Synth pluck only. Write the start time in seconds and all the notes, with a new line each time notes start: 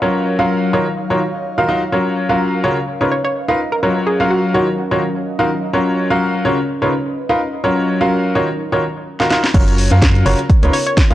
3.12 C#5
3.25 C#5
3.72 A#4
3.83 A#4
4.07 G#4
4.31 F#4
4.54 F#4
10.73 C#5
10.87 C#5